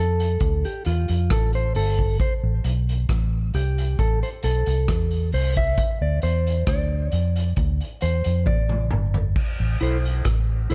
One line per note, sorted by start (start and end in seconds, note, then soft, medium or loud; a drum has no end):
0.00 0.38 F2 medium
0.00 0.66 A4 medium
0.20 closed hi-hat medium
0.40 0.63 D2 loud
0.40 kick loud
0.40 closed hi-hat medium
0.64 0.86 G4 medium
0.64 closed hi-hat soft
0.85 1.08 E2 medium
0.85 1.32 F4 medium
0.85 closed hi-hat medium
1.08 1.29 F2 medium
1.08 closed hi-hat medium
1.30 1.73 A1 medium
1.30 1.55 A4 medium
1.30 kick loud
1.30 cross-stick loud
1.30 closed hi-hat loud
1.53 1.76 C5 medium
1.53 closed hi-hat soft
1.74 2.17 G1 medium
1.74 2.20 A4 medium
1.74 open hi-hat medium
1.99 kick medium
2.20 2.33 C5 medium
2.20 kick loud
2.20 closed hi-hat loud
2.43 2.63 A1 medium
2.64 3.07 B1 medium
2.64 closed hi-hat medium
2.89 closed hi-hat soft
3.09 3.51 A1 loud
3.09 kick loud
3.09 cross-stick loud
3.09 closed hi-hat medium
3.54 3.96 C2 loud
3.54 4.00 G4 medium
3.54 closed hi-hat medium
3.78 closed hi-hat medium
3.99 4.21 A1 loud
3.99 4.23 A4 medium
3.99 kick loud
3.99 closed hi-hat medium
4.23 4.29 C5 medium
4.23 closed hi-hat medium
4.43 4.66 B1 medium
4.43 5.29 A4 medium
4.43 closed hi-hat medium
4.66 4.87 C2 medium
4.66 closed hi-hat medium
4.88 5.31 E2 medium
4.88 kick loud
4.88 cross-stick loud
4.88 closed hi-hat medium
5.11 closed hi-hat medium
5.32 5.75 C2 loud
5.32 5.57 C5 medium
5.32 open hi-hat medium
5.57 6.02 E5 loud
5.57 kick medium
5.77 kick loud
5.77 closed hi-hat loud
6.01 6.21 D2 medium
6.01 6.23 D5 medium
6.22 6.65 E2 loud
6.22 6.68 C5 medium
6.22 closed hi-hat medium
6.47 closed hi-hat soft
6.67 7.10 D2 loud
6.67 7.53 D5 medium
6.67 kick loud
6.67 cross-stick loud
6.67 closed hi-hat loud
7.12 7.55 F2 medium
7.12 closed hi-hat medium
7.36 closed hi-hat medium
7.56 7.79 D2 loud
7.56 kick loud
7.56 closed hi-hat medium
7.80 closed hi-hat medium
8.01 8.24 E2 medium
8.01 8.44 C5 medium
8.01 closed hi-hat medium
8.24 8.46 F2 medium
8.24 closed hi-hat medium
8.46 8.89 A1 loud
8.46 8.88 D5 medium
8.46 kick loud
8.46 high tom medium
8.69 mid tom medium
8.91 9.34 G1 medium
8.91 mid tom medium
9.14 floor tom medium
9.36 kick loud
9.36 crash loud
9.60 9.80 A1 medium
9.80 10.23 B1 medium
9.80 9.96 E4 medium
9.80 9.97 A4 medium
9.80 9.97 C5 medium
9.80 closed hi-hat medium
10.05 closed hi-hat soft
10.25 10.68 A1 medium
10.25 kick loud
10.25 cross-stick loud
10.25 closed hi-hat loud
10.70 10.75 C2 medium
10.70 10.75 E4 medium
10.70 10.75 A4 medium
10.70 closed hi-hat medium